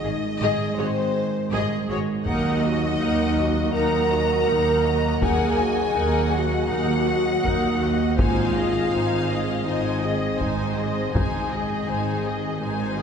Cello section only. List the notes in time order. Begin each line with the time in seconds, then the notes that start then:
0.04 G#2
0.41 G#2
0.78 G#2
1.52 G#2
1.89 G#2
2.26 D#2
3.00 D#2
3.74 D#2
4.49 D#2
5.23 D#2
5.97 D#2
6.71 D#2
7.45 D#2
8.18 G#2
8.92 G#2
9.66 G#2
10.40 G#2
11.14 G#2
11.89 G#2
12.63 G#2